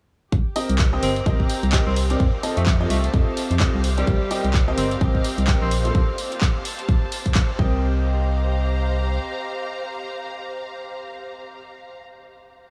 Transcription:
0.32 fm bass C2, string section G4, kick, closed hi-hat
0.56 upright piano C4 G4 A#4 D#5, open hi-hat
0.69 fm bass C2, string section C5, closed hi-hat
0.79 kick, clap, closed hi-hat
0.93 upright piano C4 G4 A#4 D#5
1.03 fm bass G1, tenor saxophone C4, open hi-hat
1.16 string section F5 A#5, closed hi-hat
1.26 fm bass C2, upright piano C4 G4 A#4 D#5, kick, closed hi-hat
1.40 kick
1.50 open hi-hat
1.63 fm bass C2, closed hi-hat
1.72 upright piano C4 G4 A#4 D#5, kick, clap, closed hi-hat
1.87 fm bass C2, tenor saxophone C4
1.96 open hi-hat
2.10 upright piano C4 G4 A#4 D5, closed hi-hat
2.20 fm bass F2, kick, closed hi-hat
2.43 upright piano C4 F4 A4 D#5, open hi-hat
2.57 fm bass F2, tenor saxophone A3, closed hi-hat
2.66 tenor saxophone A3, kick, clap, closed hi-hat
2.77 upright piano C4 F4 A4 D#5, string section A5
2.90 fm bass C2, tenor saxophone A3, open hi-hat
3.04 closed hi-hat
3.14 fm bass F2, upright piano C4 F4 A4 D#5, kick, closed hi-hat
3.37 open hi-hat
3.51 fm bass F2, closed hi-hat
3.60 upright piano C4 F4 A4 D#5, kick, clap, closed hi-hat
3.74 fm bass C2
3.84 open hi-hat
3.98 tenor saxophone G3, upright piano C4 G4 A#4 D5, closed hi-hat
4.07 fm bass C2, kick, closed hi-hat
4.31 upright piano C4 G4 A#4 D#5, open hi-hat
4.45 fm bass C2, closed hi-hat
4.54 kick, clap, closed hi-hat
4.63 string section A#5
4.68 upright piano C4 G4 A#4 D#5
4.78 fm bass G1, tenor saxophone C4, open hi-hat
4.91 closed hi-hat
5.01 fm bass C2, upright piano C4 G4 A#4 D#5, kick, closed hi-hat
5.15 kick
5.24 open hi-hat
5.38 fm bass C2, closed hi-hat
5.47 upright piano C4 G4 A#4 D#5, kick, clap, closed hi-hat
5.62 fm bass A#1, tenor saxophone C4
5.71 open hi-hat
5.85 upright piano A#3 F4 A4 C5, tenor saxophone C4, closed hi-hat
5.95 tenor saxophone C4, kick, closed hi-hat
6.18 open hi-hat
6.25 string section A5
6.32 closed hi-hat
6.41 kick, clap, closed hi-hat
6.65 open hi-hat
6.79 closed hi-hat
6.89 kick, closed hi-hat
7.12 open hi-hat
7.26 kick, closed hi-hat
7.35 kick, clap, closed hi-hat
7.59 fm bass C2, upright piano C4 G4 A#4 D#5, string section G4, kick
7.67 string section C5
7.98 string section F5
8.04 string section A#5

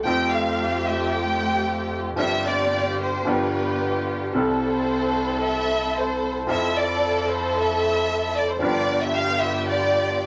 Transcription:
0.04 double bass F2, upright piano F2 F3 A3 C4, string section A3 F4 G4, violin section G5
0.09 upright piano G4
0.31 violin section F5
0.85 violin section E5
1.11 violin section G5
2.16 double bass G1, upright piano G1 G2 F3 C4 D4, string section C4 F4 G4, violin section E5
2.21 upright piano G4
2.47 violin section D5
3.02 violin section C5
3.25 double bass G1, upright piano G1 G2 F3 B3 D4 G4, string section B3 F4 G4
3.29 violin section B4
4.33 double bass C2, upright piano C2 C3 G3 C4 E4 A4, string section C4 E4 A4
4.63 violin section C5
5.45 violin section E5
5.97 violin section C5
6.48 upright piano F2 F3 C4 E4 A4, double bass F2, string section E4 A4, violin section E5
6.78 violin section D5
7.30 violin section C5
7.59 violin section E5
8.37 violin section D5
8.50 violin section C5
8.60 double bass G1, upright piano G1 G2 F3 B3 D4, string section B3 F4 G4, violin section D5
8.64 upright piano G4
9.02 violin section E5
9.16 violin section F5
9.40 violin section E5
9.68 violin section D5

